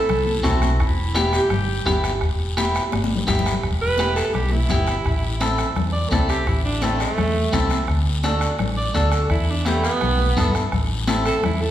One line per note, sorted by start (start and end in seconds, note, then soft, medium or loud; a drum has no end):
0.00 0.41 E4 medium
0.00 0.59 A4 loud
0.09 0.38 C2 loud
0.09 bombo rim medium
0.09 high conga soft
0.09 low conga medium
0.09 long guiro medium
0.27 high conga medium
0.43 0.82 B1 medium
0.43 0.69 C4 medium
0.43 0.69 E4 medium
0.43 0.81 F#4 medium
0.43 0.69 A4 medium
0.43 bombo low medium
0.43 bombo rim medium
0.43 high conga medium
0.43 short guiro medium
0.62 bombo rim medium
0.62 high conga medium
0.62 short guiro medium
0.80 1.37 E1 loud
0.80 1.17 E4 loud
0.80 bombo low medium
0.80 bombo rim medium
0.80 high conga soft
0.80 long guiro medium
1.15 1.40 B3 medium
1.15 1.40 E4 medium
1.15 1.33 G4 loud
1.15 1.41 G4 loud
1.15 bombo rim medium
1.15 high conga medium
1.15 short guiro medium
1.33 2.00 G4 loud
1.33 bombo rim medium
1.33 short guiro medium
1.50 1.79 G1 loud
1.50 bombo rim medium
1.50 high conga soft
1.50 low conga medium
1.50 long guiro medium
1.86 2.22 G1 medium
1.86 2.11 B3 medium
1.86 2.11 E4 medium
1.86 2.11 G4 loud
1.86 bombo low medium
1.86 bombo rim medium
1.86 high conga medium
1.86 low conga medium
1.86 short guiro medium
2.04 bombo rim medium
2.04 short guiro medium
2.21 2.78 E1 medium
2.21 bombo low medium
2.21 bombo rim medium
2.21 high conga soft
2.21 long guiro medium
2.57 2.82 B3 medium
2.57 2.82 E4 medium
2.57 2.82 G4 medium
2.57 bombo rim medium
2.57 high conga medium
2.57 short guiro medium
2.75 bombo rim medium
2.75 short guiro medium
2.92 3.21 G1 medium
2.92 bombo rim medium
2.92 high conga medium
2.92 long guiro medium
3.04 high conga medium
3.16 low conga medium
3.27 3.56 G1 loud
3.27 3.53 B3 medium
3.27 3.53 E4 medium
3.27 3.53 G4 medium
3.27 bombo low medium
3.27 bombo rim medium
3.27 low conga medium
3.27 short guiro medium
3.39 low conga medium
3.46 bombo rim medium
3.46 short guiro medium
3.52 low conga medium
3.63 4.20 E1 medium
3.63 bombo low medium
3.63 bombo rim medium
3.63 high conga soft
3.63 long guiro medium
3.82 4.15 B4 loud
3.98 4.24 B3 medium
3.98 4.24 E4 medium
3.98 4.24 G4 medium
3.98 bombo rim medium
3.98 high conga medium
3.98 short guiro medium
4.16 4.35 A4 medium
4.16 bombo rim medium
4.16 short guiro medium
4.34 4.63 B1 medium
4.34 4.53 G4 medium
4.34 bombo rim medium
4.34 high conga soft
4.34 low conga medium
4.34 long guiro medium
4.51 5.55 E4 medium
4.51 high conga medium
4.69 4.98 G1 medium
4.69 4.95 B3 medium
4.69 4.95 E4 soft
4.69 4.95 G4 medium
4.69 bombo low medium
4.69 bombo rim medium
4.69 high conga medium
4.69 low conga medium
4.69 short guiro medium
4.87 bombo rim medium
4.87 short guiro medium
5.05 5.62 A1 loud
5.05 bombo low medium
5.05 bombo rim medium
5.05 high conga soft
5.05 long guiro medium
5.40 5.65 C4 medium
5.40 5.66 E4 medium
5.40 5.66 A4 medium
5.40 bombo rim medium
5.40 high conga medium
5.40 short guiro medium
5.58 bombo rim medium
5.58 short guiro medium
5.76 6.05 E2 loud
5.76 bombo rim medium
5.76 high conga soft
5.76 low conga medium
5.76 long guiro medium
5.93 6.11 D5 medium
6.10 6.40 C2 medium
6.10 6.36 C4 medium
6.10 6.37 E4 medium
6.10 6.28 A4 medium
6.10 6.37 A4 medium
6.10 bombo low medium
6.10 bombo rim medium
6.10 high conga medium
6.10 short guiro medium
6.29 6.50 G4 medium
6.29 bombo rim medium
6.29 short guiro medium
6.47 7.04 A1 loud
6.47 6.64 E4 medium
6.47 bombo low medium
6.47 bombo rim medium
6.47 high conga soft
6.47 long guiro medium
6.65 6.85 D4 medium
6.82 7.00 A3 medium
6.82 7.07 C4 medium
6.82 7.07 E4 medium
6.82 7.08 A4 medium
6.82 bombo rim medium
6.82 high conga medium
6.82 short guiro medium
7.00 7.69 A3 loud
7.00 bombo rim medium
7.00 short guiro medium
7.18 7.47 E2 medium
7.18 bombo rim medium
7.18 high conga soft
7.18 low conga medium
7.18 long guiro medium
7.35 high conga medium
7.53 7.82 C2 medium
7.53 7.78 C4 medium
7.53 7.78 E4 medium
7.53 7.78 A4 medium
7.53 bombo low medium
7.53 bombo rim medium
7.53 high conga medium
7.53 low conga medium
7.53 short guiro medium
7.70 bombo rim medium
7.70 high conga medium
7.70 short guiro medium
7.87 8.45 D2 medium
7.87 bombo low medium
7.87 bombo rim medium
7.87 high conga soft
7.87 long guiro medium
8.24 8.49 D4 medium
8.24 8.49 F#4 medium
8.24 8.49 A4 loud
8.24 bombo rim medium
8.24 high conga medium
8.24 short guiro medium
8.41 bombo rim medium
8.41 short guiro medium
8.58 8.88 A1 loud
8.58 bombo rim medium
8.58 high conga soft
8.58 low conga medium
8.58 long guiro medium
8.77 8.94 D5 medium
8.94 9.23 D2 loud
8.94 9.20 D4 medium
8.94 9.20 F#4 medium
8.94 9.12 A4 medium
8.94 9.20 A4 medium
8.94 bombo low medium
8.94 bombo rim medium
8.94 high conga medium
8.94 short guiro medium
9.12 9.30 A4 medium
9.12 bombo rim medium
9.12 short guiro medium
9.30 9.88 E2 loud
9.30 9.52 E4 medium
9.30 bombo low medium
9.30 bombo rim medium
9.30 high conga soft
9.30 long guiro medium
9.50 9.68 D4 medium
9.65 9.84 A3 medium
9.65 9.91 B3 medium
9.65 9.91 E4 medium
9.65 9.91 G4 medium
9.65 bombo rim medium
9.65 high conga medium
9.65 short guiro medium
9.84 10.54 B3 loud
9.84 bombo rim medium
9.84 short guiro medium
10.01 10.31 B1 loud
10.01 bombo rim medium
10.01 high conga soft
10.01 low conga medium
10.01 long guiro medium
10.19 high conga medium
10.37 10.66 G2 medium
10.37 10.62 B3 medium
10.37 10.62 E4 medium
10.37 10.63 A4 loud
10.37 bombo low medium
10.37 bombo rim medium
10.37 high conga medium
10.37 low conga medium
10.37 short guiro medium
10.55 bombo rim medium
10.55 short guiro medium
10.72 11.30 A1 medium
10.72 bombo low medium
10.72 bombo rim medium
10.72 high conga soft
10.72 low conga medium
10.72 long guiro medium
11.07 11.33 C4 loud
11.07 11.33 E4 medium
11.07 11.33 A4 medium
11.07 bombo rim medium
11.07 high conga medium
11.07 short guiro medium
11.26 11.44 A4 medium
11.26 bombo rim medium
11.26 short guiro medium
11.43 11.71 E2 medium
11.43 11.63 E4 medium
11.43 bombo rim medium
11.43 high conga soft
11.43 low conga medium
11.43 long guiro medium
11.62 11.71 A4 medium